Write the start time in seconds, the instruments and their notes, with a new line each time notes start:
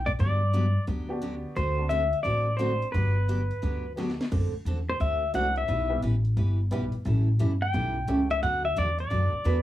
0.06 pedal steel guitar D5, kick, open hi-hat
0.19 upright bass G2, steel-string acoustic guitar D3 F#3 B3 D4 G4, pedal steel guitar D5, kick, open hi-hat
0.53 steel-string acoustic guitar D3 F#3 B3 D4 G4, closed hi-hat
0.87 upright bass D2, steel-string acoustic guitar D3 F#3 B3 D4 G4, kick, open hi-hat
1.09 upright piano B3 D4 F#4 G4
1.22 steel-string acoustic guitar D3 F#3 B3 D4 G4, closed hi-hat
1.56 upright bass D2, steel-string acoustic guitar D3 A3 C4 F#4 A4, pedal steel guitar C5, kick, open hi-hat
1.77 upright piano C4 D4 F#4 A4
1.89 steel-string acoustic guitar D3 A3 C4 F#4 A4, pedal steel guitar E5, closed hi-hat
2.13 open hi-hat
2.23 upright bass A1, steel-string acoustic guitar D3 A3 C4 F#4 A4, pedal steel guitar D5, kick, open hi-hat
2.57 steel-string acoustic guitar D3 A3 C4 F#4 A4, upright piano C4 D4 F#4 C5, pedal steel guitar C5, closed hi-hat
2.82 open hi-hat
2.92 upright bass G1, steel-string acoustic guitar D3 F#3 B3 D4 G4, pedal steel guitar B4, kick, open hi-hat
3.28 steel-string acoustic guitar D3 F#3 B3 D4 G4, closed hi-hat
3.51 open hi-hat
3.62 upright bass D2, steel-string acoustic guitar D3 F#3 B3 D4 G4, kick, open hi-hat
3.96 steel-string acoustic guitar D3 F#3 B3 D4 G4, upright piano B3 F#4 G4 A4, snare
4.10 snare
4.21 snare
4.31 upright bass F#2, steel-string acoustic guitar D3 A3 C4 F#4 A4, kick, crash
4.54 muted upright bass stroke
4.65 upright bass E2, steel-string acoustic guitar D3 A3 C4 F#4 A4, closed hi-hat
4.90 pedal steel guitar C5
5.00 upright bass D2, steel-string acoustic guitar D3 A3 C4 F#4 A4, pedal steel guitar E5, kick, open hi-hat
5.33 upright bass C2, steel-string acoustic guitar D3 A3 C4 F#4 A4, upright piano A3 C4 D4 F#4 A4, pedal steel guitar F#5, closed hi-hat
5.56 pedal steel guitar E5, open hi-hat
5.68 upright bass B1, steel-string acoustic guitar E3 B3 E4 G4 B4, kick, open hi-hat
5.89 upright piano G3 B3 E4 G4 B4
6.02 upright bass A1, steel-string acoustic guitar E3 B3 E4 G4 B4, closed hi-hat
6.25 open hi-hat
6.37 upright bass G1, steel-string acoustic guitar E3 B3 E4 G4 B4, kick, open hi-hat
6.71 upright bass B1, steel-string acoustic guitar E3 B3 E4 G4 B4, upright piano G3 B3 E4 G4 B4, closed hi-hat
6.92 muted upright bass stroke, open hi-hat
7.05 upright bass A1, steel-string acoustic guitar E3 G3 C#4 E4 A4, kick, open hi-hat
7.39 upright bass G1, steel-string acoustic guitar E3 G3 C#4 E4 A4, closed hi-hat
7.62 pedal steel guitar G5
7.73 upright bass B1, steel-string acoustic guitar E3 G3 C#4 E4 A4, kick, open hi-hat
8.07 upright bass C#2, steel-string acoustic guitar E3 G3 C#4 E4 A4, upright piano A3 C#4 E4 G4 A4, closed hi-hat
8.30 pedal steel guitar E5, open hi-hat
8.43 upright bass D2, steel-string acoustic guitar D3 F#3 B3 F#4 A4, pedal steel guitar F#5, kick, open hi-hat
8.65 pedal steel guitar E5
8.76 upright bass E2, steel-string acoustic guitar D3 F#3 B3 F#4 A4, pedal steel guitar D5, closed hi-hat
8.99 pedal steel guitar D5, open hi-hat
9.10 upright bass F#2, steel-string acoustic guitar D3 F#3 B3 F#4 A4, kick, open hi-hat
9.33 muted upright bass stroke
9.44 upright bass E2, steel-string acoustic guitar D3 F#3 B3 F#4 A4, electric slide guitar B4, closed hi-hat